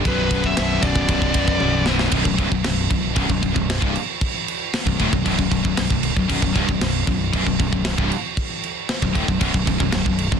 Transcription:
<<
  \new Staff \with { instrumentName = "Lead electric guitar" } { \time 4/4 \key b \phrygian \tempo 4 = 115 b'8. e''8. d''2 r8 | r1 | r1 | r1 |
r1 | }
  \new Staff \with { instrumentName = "Distorted electric guitar" } { \clef bass \time 4/4 \key b \phrygian <b,, fis, b,>1 | <b,, fis,>16 <b,, fis,>16 <c, g,>16 <b,, fis,>16 <b,, fis,>8 <b,, fis,>8 <b,, fis,>16 <b,, fis,>16 <b,, fis,>16 <b,, fis,>8 <c, g,>16 r8 | r4 r16 <b,, fis,>16 <d, a,>16 <b,, fis,>16 <b,, fis,>16 <b,, fis,>16 <b,, fis,>16 <b,, fis,>16 <b,, fis,>16 <b,, fis,>8 <b,, fis,>16 | <b,, fis,>16 <b,, fis,>16 <c, g,>16 <b,, fis,>16 <b,, fis,>8 <b,, fis,>8 <b,, fis,>16 <b,, fis,>16 <b,, fis,>16 <b,, fis,>8 <c, g,>16 r8 |
r4 r16 <b,, fis,>16 <d, a,>16 <b,, fis,>16 <b,, fis,>16 <b,, fis,>16 <b,, fis,>16 <b,, fis,>16 <b,, fis,>16 <b,, fis,>8 <b,, fis,>16 | }
  \new Staff \with { instrumentName = "Distorted electric guitar" } { \clef bass \time 4/4 \key b \phrygian <b,, fis, b,>2.~ <b,, fis, b,>8 <b,, fis, b,>8 | <b,, fis,>16 <b,, fis,>16 <c, g,>16 <b,, fis,>16 <b,, fis,>8 <b,, fis,>8 <b,, fis,>16 <b,, fis,>16 <b,, fis,>16 <b,, fis,>8 <c, g,>16 r8 | r4 r16 <b,, fis,>16 <d, a,>16 <b,, fis,>16 <b,, fis,>16 <b,, fis,>16 <b,, fis,>16 <b,, fis,>16 <b,, fis,>16 <b,, fis,>8 <b,, fis,>16 | <b,, fis,>16 <b,, fis,>16 <c, g,>16 <b,, fis,>16 <b,, fis,>8 <b,, fis,>8 <b,, fis,>16 <b,, fis,>16 <b,, fis,>16 <b,, fis,>8 <c, g,>16 r8 |
r4 r16 <b,, fis,>16 <d, a,>16 <b,, fis,>16 <b,, fis,>16 <b,, fis,>16 <b,, fis,>16 <b,, fis,>16 <b,, fis,>16 <b,, fis,>8 <b,, fis,>16 | }
  \new Staff \with { instrumentName = "Overdriven electric guitar" } { \clef bass \time 4/4 \key b \phrygian <b,, fis, b,>8 <b,, fis, b,>8 <b,, fis, b,>8 <b,, fis, b,>8 <b,, fis, b,>8 <b,, fis, b,>8 <b,, fis, b,>8 <b,, fis, b,>8 | <b,, fis,>16 <b,, fis,>16 <c, g,>16 <b,, fis,>16 <b,, fis,>8 <b,, fis,>8 <b,, fis,>16 <b,, fis,>16 <b,, fis,>16 <b,, fis,>8 <c, g,>16 r8 | r4 r16 <b,, fis,>16 <d, a,>16 <b,, fis,>16 <b,, fis,>16 <b,, fis,>16 <b,, fis,>16 <b,, fis,>16 <b,, fis,>16 <b,, fis,>8 <b,, fis,>16 | <b,, fis,>16 <b,, fis,>16 <c, g,>16 <b,, fis,>16 <b,, fis,>8 <b,, fis,>8 <b,, fis,>16 <b,, fis,>16 <b,, fis,>16 <b,, fis,>8 <c, g,>16 r8 |
r4 r16 <b,, fis,>16 <d, a,>16 <b,, fis,>16 <b,, fis,>16 <b,, fis,>16 <b,, fis,>16 <b,, fis,>16 <b,, fis,>16 <b,, fis,>8 <b,, fis,>16 | }
  \new Staff \with { instrumentName = "Fingered electric bass" } { \clef bass \time 4/4 \key b \phrygian b,,,8 b,,,8 b,,,8 b,,,8 b,,,8 b,,,8 b,,,8 b,,,8 | b,,,16 b,,,16 c,,16 b,,,16 b,,,8 b,,,8 b,,,16 b,,,16 b,,,16 b,,,8 c,,16 r8 | r4 r16 b,,,16 d,,16 b,,,16 b,,,16 b,,,16 b,,,16 b,,,16 b,,,16 b,,,8 b,,,16 | b,,,16 b,,,16 c,,16 b,,,16 b,,,8 b,,,8 b,,,16 b,,,16 b,,,16 b,,,8 c,,16 r8 |
r4 r16 b,,,16 d,,16 b,,,16 b,,,16 b,,,16 b,,,16 b,,,16 b,,,16 b,,,8 b,,,16 | }
  \new DrumStaff \with { instrumentName = "Drums" } \drummode { \time 4/4 <bd cymr>8 <bd cymr>16 bd16 <cymr sn>8 <bd cymr>16 bd16 <bd cymr>16 bd16 <bd cymr>16 bd16 tommh8 sn16 sn16 | <cymc bd>16 bd16 <cymc bd>16 bd16 <cymc sn>8 <cymc bd>8 <cymc bd>16 bd16 <cymc bd>16 bd16 <cymc sn>16 bd16 cymc8 | <cymc bd>8 cymc8 <cymc sn>16 bd16 <cymc bd>16 bd16 <cymc bd>16 bd16 <cymc bd>16 bd16 <cymc sn>16 bd16 cymc16 bd16 | <cymc bd>16 bd16 <cymc bd>16 bd16 <cymc sn>8 <cymc bd>8 <cymc bd>16 bd16 <cymc bd>16 bd16 <cymc sn>16 bd16 cymc8 |
<cymc bd>8 cymc8 <cymc sn>16 bd16 <cymc bd>16 bd16 <cymc bd>16 bd16 <cymc bd>16 bd16 <cymc sn>16 bd16 cymc16 bd16 | }
>>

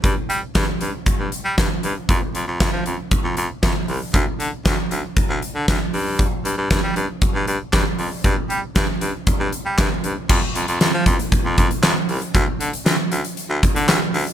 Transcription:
<<
  \new Staff \with { instrumentName = "Baritone saxophone" } { \clef bass \time 4/4 \key f \lydian \tempo 4 = 117 g,16 r16 g16 r16 g,16 r16 g,16 r8 g,16 r16 g16 g,16 r16 g,16 r16 | f,16 r16 f,16 f,16 f,16 f16 f,16 r8 f,16 f,16 r16 f,16 r16 c,16 r16 | d,16 r16 d16 r16 d,16 r16 d,16 r8 d,16 r16 d16 d,16 r16 g,8~ | g,16 r16 g,16 g,16 g,16 g16 g,16 r8 g,16 g,16 r16 g,16 r16 f,16 r16 |
g,16 r16 g16 r16 g,16 r16 g,16 r8 g,16 r16 g16 g,16 r16 g,16 r16 | f,16 r16 f,16 f,16 f,16 f16 f,16 r8 f,16 f,16 r16 f,16 r16 c,16 r16 | d,16 r16 d16 r16 d,16 r16 d,16 r8 d,16 r16 d16 d,16 r16 d,16 r16 | }
  \new DrumStaff \with { instrumentName = "Drums" } \drummode { \time 4/4 <hh bd>8 hh8 <hh bd sn>8 hh8 <hh bd>8 hh8 <hh bd sn>8 hh8 | <hh bd>8 hh8 <hh bd sn>8 hh8 <hh bd>8 hh8 <hh bd sn>8 hho8 | <hh bd>8 hh8 <hh bd sn>8 hh8 <hh bd>8 hh8 <hh bd sn>8 hho8 | <hh bd>8 hh8 <hh bd sn>8 hh8 <hh bd>8 hh8 <hc hh bd sn>8 hho8 |
<hh bd>8 hh8 <hh bd sn>8 hh8 <hh bd>8 hh8 <hc hh bd sn>8 hh8 | <cymc bd>8 hh16 hh16 <hh sn>8 <hh bd>16 hh16 <hh bd>8 <hh bd>16 hh16 <hc hh sn>8 hho16 hh16 | <hh bd>8 hh16 hh16 <hh sn>8 hh16 hh16 hh8 <hh bd>16 hh16 <hc hh sn>8 hho16 hh16 | }
>>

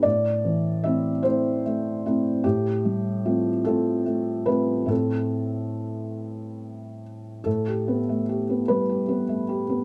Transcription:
<<
  \new Staff \with { instrumentName = "Felt piano" } { \time 6/8 \key a \minor \tempo 4. = 49 d''4 e''8 c''4. | g'4. a'4 b'8 | a'2~ a'8 r8 | a'4. b'4. | }
  \new Staff \with { instrumentName = "Felt piano" } { \time 6/8 \key a \minor a,8 e8 <a c' e'>8 <a c' e'>8 a8 <a c' e'>8 | a,8 g8 <a c' f'>8 <a c' f'>8 a8 <a c' f'>8 | <a, a c' e'>2. | a,16 g'16 b16 a16 g'16 b16 g16 g'16 b16 a16 g'16 b16 | }
>>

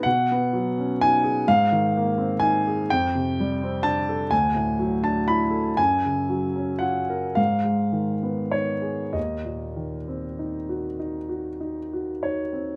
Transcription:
\new Staff \with { instrumentName = "Grand piano" } { \time 6/8 \key aes \dorian \tempo 4. = 39 << { fis''4 gis''8 f''4 aes''8 | g''4 a''8 aes''8. a''16 ces'''8 | aes''4 ges''8 f''4 des''8 | ees''4. r4 des''8 | } \\ { b,16 b16 fis16 cis'16 dis'16 gis'16 aes,16 ees16 bes16 c'16 ees'16 aes'16 | f,16 c16 g16 c'16 d'16 a'16 d,16 a,16 fis16 d'16 e'16 a'16 | ges,16 des16 ges16 des'16 f'16 bes'16 aes,16 aes16 ees16 ces'16 ees'16 aes'16 | ees,16 bes,16 ees16 c'16 ees'16 ges'16 ees'16 ges'16 ees'16 ges'16 ees'16 c'16 | } >> }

